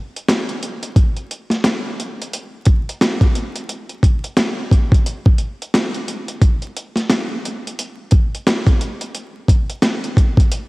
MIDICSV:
0, 0, Header, 1, 2, 480
1, 0, Start_track
1, 0, Tempo, 681818
1, 677, Time_signature, 4, 2, 24, 8
1, 7522, End_track
2, 0, Start_track
2, 0, Title_t, "Drums"
2, 115, Note_on_c, 9, 42, 54
2, 186, Note_off_c, 9, 42, 0
2, 200, Note_on_c, 9, 38, 117
2, 205, Note_on_c, 9, 40, 92
2, 207, Note_on_c, 9, 42, 102
2, 271, Note_off_c, 9, 38, 0
2, 276, Note_off_c, 9, 40, 0
2, 277, Note_off_c, 9, 42, 0
2, 345, Note_on_c, 9, 42, 37
2, 415, Note_off_c, 9, 42, 0
2, 441, Note_on_c, 9, 42, 73
2, 512, Note_off_c, 9, 42, 0
2, 583, Note_on_c, 9, 42, 55
2, 653, Note_off_c, 9, 42, 0
2, 677, Note_on_c, 9, 36, 114
2, 678, Note_on_c, 9, 42, 80
2, 747, Note_off_c, 9, 36, 0
2, 749, Note_off_c, 9, 42, 0
2, 821, Note_on_c, 9, 42, 38
2, 891, Note_off_c, 9, 42, 0
2, 922, Note_on_c, 9, 42, 81
2, 993, Note_off_c, 9, 42, 0
2, 1057, Note_on_c, 9, 38, 40
2, 1066, Note_on_c, 9, 42, 52
2, 1127, Note_off_c, 9, 38, 0
2, 1136, Note_off_c, 9, 42, 0
2, 1154, Note_on_c, 9, 38, 106
2, 1157, Note_on_c, 9, 42, 105
2, 1159, Note_on_c, 9, 40, 82
2, 1225, Note_off_c, 9, 38, 0
2, 1227, Note_off_c, 9, 42, 0
2, 1230, Note_off_c, 9, 40, 0
2, 1406, Note_on_c, 9, 42, 62
2, 1476, Note_off_c, 9, 42, 0
2, 1560, Note_on_c, 9, 42, 55
2, 1631, Note_off_c, 9, 42, 0
2, 1643, Note_on_c, 9, 42, 103
2, 1714, Note_off_c, 9, 42, 0
2, 1869, Note_on_c, 9, 42, 68
2, 1877, Note_on_c, 9, 36, 96
2, 1939, Note_off_c, 9, 42, 0
2, 1947, Note_off_c, 9, 36, 0
2, 2036, Note_on_c, 9, 42, 53
2, 2106, Note_off_c, 9, 42, 0
2, 2120, Note_on_c, 9, 38, 117
2, 2125, Note_on_c, 9, 40, 96
2, 2127, Note_on_c, 9, 42, 102
2, 2191, Note_off_c, 9, 38, 0
2, 2196, Note_off_c, 9, 40, 0
2, 2197, Note_off_c, 9, 42, 0
2, 2260, Note_on_c, 9, 36, 97
2, 2264, Note_on_c, 9, 42, 39
2, 2331, Note_off_c, 9, 36, 0
2, 2335, Note_off_c, 9, 42, 0
2, 2361, Note_on_c, 9, 42, 71
2, 2431, Note_off_c, 9, 42, 0
2, 2503, Note_on_c, 9, 42, 56
2, 2573, Note_off_c, 9, 42, 0
2, 2598, Note_on_c, 9, 42, 77
2, 2669, Note_off_c, 9, 42, 0
2, 2741, Note_on_c, 9, 42, 37
2, 2811, Note_off_c, 9, 42, 0
2, 2836, Note_on_c, 9, 36, 87
2, 2843, Note_on_c, 9, 42, 82
2, 2907, Note_off_c, 9, 36, 0
2, 2913, Note_off_c, 9, 42, 0
2, 2986, Note_on_c, 9, 42, 53
2, 3057, Note_off_c, 9, 42, 0
2, 3075, Note_on_c, 9, 38, 102
2, 3078, Note_on_c, 9, 42, 104
2, 3080, Note_on_c, 9, 40, 84
2, 3146, Note_off_c, 9, 38, 0
2, 3148, Note_off_c, 9, 42, 0
2, 3151, Note_off_c, 9, 40, 0
2, 3319, Note_on_c, 9, 36, 96
2, 3327, Note_on_c, 9, 42, 64
2, 3390, Note_off_c, 9, 36, 0
2, 3397, Note_off_c, 9, 42, 0
2, 3463, Note_on_c, 9, 36, 101
2, 3481, Note_on_c, 9, 42, 56
2, 3533, Note_off_c, 9, 36, 0
2, 3551, Note_off_c, 9, 42, 0
2, 3564, Note_on_c, 9, 42, 100
2, 3634, Note_off_c, 9, 42, 0
2, 3703, Note_on_c, 9, 36, 106
2, 3773, Note_off_c, 9, 36, 0
2, 3789, Note_on_c, 9, 42, 68
2, 3860, Note_off_c, 9, 42, 0
2, 3956, Note_on_c, 9, 42, 52
2, 4027, Note_off_c, 9, 42, 0
2, 4041, Note_on_c, 9, 38, 116
2, 4046, Note_on_c, 9, 40, 92
2, 4047, Note_on_c, 9, 42, 104
2, 4111, Note_off_c, 9, 38, 0
2, 4116, Note_off_c, 9, 40, 0
2, 4118, Note_off_c, 9, 42, 0
2, 4185, Note_on_c, 9, 42, 38
2, 4255, Note_off_c, 9, 42, 0
2, 4282, Note_on_c, 9, 42, 76
2, 4352, Note_off_c, 9, 42, 0
2, 4423, Note_on_c, 9, 42, 56
2, 4494, Note_off_c, 9, 42, 0
2, 4517, Note_on_c, 9, 36, 117
2, 4518, Note_on_c, 9, 42, 81
2, 4587, Note_off_c, 9, 36, 0
2, 4589, Note_off_c, 9, 42, 0
2, 4661, Note_on_c, 9, 42, 37
2, 4731, Note_off_c, 9, 42, 0
2, 4763, Note_on_c, 9, 42, 81
2, 4833, Note_off_c, 9, 42, 0
2, 4897, Note_on_c, 9, 38, 40
2, 4906, Note_on_c, 9, 42, 53
2, 4968, Note_off_c, 9, 38, 0
2, 4977, Note_off_c, 9, 42, 0
2, 4995, Note_on_c, 9, 38, 105
2, 4998, Note_on_c, 9, 42, 101
2, 5000, Note_on_c, 9, 40, 83
2, 5066, Note_off_c, 9, 38, 0
2, 5068, Note_off_c, 9, 42, 0
2, 5070, Note_off_c, 9, 40, 0
2, 5247, Note_on_c, 9, 42, 66
2, 5317, Note_off_c, 9, 42, 0
2, 5400, Note_on_c, 9, 42, 58
2, 5470, Note_off_c, 9, 42, 0
2, 5483, Note_on_c, 9, 42, 103
2, 5553, Note_off_c, 9, 42, 0
2, 5709, Note_on_c, 9, 42, 68
2, 5716, Note_on_c, 9, 36, 102
2, 5779, Note_off_c, 9, 42, 0
2, 5787, Note_off_c, 9, 36, 0
2, 5875, Note_on_c, 9, 42, 52
2, 5946, Note_off_c, 9, 42, 0
2, 5960, Note_on_c, 9, 38, 120
2, 5965, Note_on_c, 9, 40, 92
2, 5967, Note_on_c, 9, 42, 101
2, 6031, Note_off_c, 9, 38, 0
2, 6036, Note_off_c, 9, 40, 0
2, 6037, Note_off_c, 9, 42, 0
2, 6100, Note_on_c, 9, 36, 98
2, 6105, Note_on_c, 9, 42, 37
2, 6171, Note_off_c, 9, 36, 0
2, 6175, Note_off_c, 9, 42, 0
2, 6201, Note_on_c, 9, 42, 72
2, 6272, Note_off_c, 9, 42, 0
2, 6343, Note_on_c, 9, 42, 55
2, 6413, Note_off_c, 9, 42, 0
2, 6438, Note_on_c, 9, 42, 80
2, 6509, Note_off_c, 9, 42, 0
2, 6676, Note_on_c, 9, 36, 88
2, 6682, Note_on_c, 9, 42, 83
2, 6747, Note_off_c, 9, 36, 0
2, 6753, Note_off_c, 9, 42, 0
2, 6826, Note_on_c, 9, 42, 54
2, 6896, Note_off_c, 9, 42, 0
2, 6914, Note_on_c, 9, 38, 103
2, 6917, Note_on_c, 9, 42, 101
2, 6919, Note_on_c, 9, 40, 86
2, 6985, Note_off_c, 9, 38, 0
2, 6987, Note_off_c, 9, 42, 0
2, 6990, Note_off_c, 9, 40, 0
2, 7068, Note_on_c, 9, 42, 37
2, 7138, Note_off_c, 9, 42, 0
2, 7159, Note_on_c, 9, 36, 96
2, 7166, Note_on_c, 9, 42, 65
2, 7229, Note_off_c, 9, 36, 0
2, 7237, Note_off_c, 9, 42, 0
2, 7303, Note_on_c, 9, 36, 100
2, 7320, Note_on_c, 9, 42, 56
2, 7373, Note_off_c, 9, 36, 0
2, 7391, Note_off_c, 9, 42, 0
2, 7403, Note_on_c, 9, 42, 102
2, 7474, Note_off_c, 9, 42, 0
2, 7522, End_track
0, 0, End_of_file